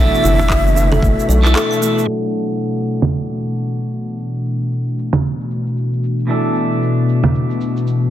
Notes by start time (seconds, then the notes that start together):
Already playing: B1 B2 E3 A3 D4 F#4 E5
0.00 A4
0.15 shaker
0.24 F#1 E4, shaker
0.40 low conga, shaker
0.50 D5, kick, clap, shaker
0.67 shaker
0.76 D4, shaker
0.92 A4, low conga, shaker
1.02 F#1 A3, kick, shaker
1.20 shaker
1.29 B1 D5, shaker
1.42 E3 A3 D4 E4 A4, clap, shaker
1.56 A4, clap, shaker
1.71 A5, shaker
1.82 A3, shaker
1.98 shaker
2.06 F#3 B3 D4 A4
2.35 shaker
2.51 shaker
2.62 shaker
2.88 shaker
3.02 low conga, shaker
3.14 shaker
3.30 shaker
3.40 shaker
3.56 shaker
3.66 shaker
3.92 shaker
4.08 shaker
4.19 shaker
4.35 shaker
4.45 shaker
4.61 shaker
4.72 shaker
4.88 shaker
4.99 shaker
5.13 low conga, shaker
5.25 shaker
5.41 shaker
5.51 shaker
5.67 shaker
5.77 shaker
5.93 shaker
6.04 shaker
6.19 shaker
6.27 B2 E3 A3 D4 A4, shaker
6.56 shaker
6.72 shaker
6.83 shaker
7.09 shaker
7.24 low conga, shaker
7.35 shaker
7.50 shaker
7.61 shaker
7.77 shaker
7.87 shaker